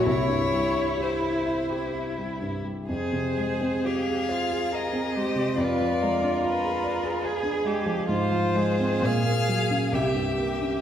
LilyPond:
<<
  \new Staff \with { instrumentName = "Violin" } { \time 3/4 \key f \minor \tempo 4 = 66 des''4 c''4. r8 | c''4 f''4 ees''4 | d''4 ces''4. r8 | c''4 f''4 e''4 | }
  \new Staff \with { instrumentName = "Violin" } { \time 3/4 \key f \minor e'2. | aes'8 aes'4. bes'8 c''8 | ces''8 bes'4. aes'8 g'8 | f'4 aes'4 g'8 g'8 | }
  \new Staff \with { instrumentName = "Cello" } { \time 3/4 \key f \minor e'2~ e'8 r8 | aes'4 g'8 f'8 aes'8 g'8 | f'2 aes'4 | f'8 aes'4. g'4 | }
  \new Staff \with { instrumentName = "Grand piano" } { \time 3/4 \key f \minor c,16 g,16 g16 e'16 g'16 e'16 e''16 g'16 e'16 g16 g,16 g16 | f,16 c16 aes16 c'16 f'16 aes'16 c''16 aes'16 f'16 c'16 aes16 c16 | f,16 f16 aes16 d'16 f'16 aes'16 d''16 aes'16 f'16 d'16 aes16 f16 | aes,16 f16 aes16 c'16 bes,16 bes16 ges16 des'16 c,16 g,16 bes16 des'16 | }
>>